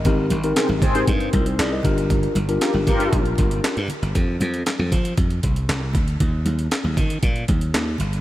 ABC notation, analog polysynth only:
X:1
M:4/4
L:1/16
Q:1/4=117
K:Fdor
V:1 name="Analog polysynth"
z4 [CAc] z [CAc]2 z8 | z4 [FGB] z [FGB]3 z6 z | z16 | z16 |]